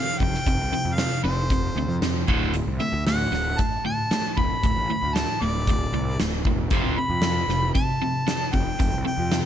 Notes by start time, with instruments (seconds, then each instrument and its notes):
Already playing: overdriven electric guitar F2 C3, harmonica F5
0.19 picked electric bass F1, overdriven electric guitar F2 C3, harmonica G5, kick
0.34 snare
0.47 picked electric bass F1, overdriven electric guitar F2 C3, kick, closed hi-hat
0.60 picked electric bass C2
0.73 overdriven electric guitar F2 C3
0.85 picked electric bass F2
0.95 overdriven electric guitar F2 C3, harmonica F5, snare, closed hi-hat
1.23 picked electric bass F1, overdriven electric guitar F2 C3, harmonica C5
1.50 overdriven electric guitar F2 C3, kick, closed hi-hat
1.76 picked electric bass D2, overdriven electric guitar F2 C3
1.88 picked electric bass F2
2.02 picked electric bass F2, overdriven electric guitar F2 C3, snare, closed hi-hat
2.28 picked electric bass D1, overdriven electric guitar D2 A2 D3, kick
2.54 overdriven electric guitar D2 A2, closed hi-hat
2.67 picked electric bass C2
2.79 overdriven electric guitar D2 A2, harmonica E5
2.93 picked electric bass D2
3.07 overdriven electric guitar D2 A2, harmonica F#5, snare, closed hi-hat
3.32 picked electric bass D1, overdriven electric guitar D2 A2, snare
3.58 overdriven electric guitar D2 A2, harmonica A5, kick, closed hi-hat
3.85 overdriven electric guitar D2 A2, harmonica A5
4.11 overdriven electric guitar D2 A2, snare, closed hi-hat
4.37 picked electric bass D1, overdriven electric guitar D2 A2, harmonica B5, kick
4.63 picked electric bass D1, overdriven electric guitar D2 A2, kick, closed hi-hat
4.76 picked electric bass A1
4.90 overdriven electric guitar D2 A2
5.03 picked electric bass D2
5.15 overdriven electric guitar D2 A2, harmonica A5, snare, closed hi-hat
5.42 picked electric bass D1, overdriven electric guitar D2 A2, harmonica D5
5.67 overdriven electric guitar D2 A2, kick, closed hi-hat
5.92 picked electric bass C2, overdriven electric guitar D2 A2
6.19 picked electric bass D1, overdriven electric guitar D2 A2, snare, closed hi-hat
6.45 picked electric bass E1, overdriven electric guitar D2 A2, kick
6.71 picked electric bass F1, overdriven electric guitar F2 C3 F3, kick, closed hi-hat
6.84 picked electric bass D1
6.97 overdriven electric guitar F2 C3, harmonica B5
7.09 picked electric bass F2
7.22 overdriven electric guitar F2 C3, snare, closed hi-hat
7.48 picked electric bass F1, overdriven electric guitar F2 C3, snare
7.74 overdriven electric guitar F2 C3, harmonica A5, kick, closed hi-hat
8.02 overdriven electric guitar F2 C3
8.27 overdriven electric guitar F2 C3, snare, closed hi-hat
8.53 picked electric bass F1, overdriven electric guitar F2 C3, harmonica G5, kick
8.80 picked electric bass F1, overdriven electric guitar F2 C3, kick, closed hi-hat
8.93 picked electric bass C2
9.05 overdriven electric guitar F2 C3, harmonica G5
9.18 picked electric bass F2
9.32 overdriven electric guitar F2 C3, snare, closed hi-hat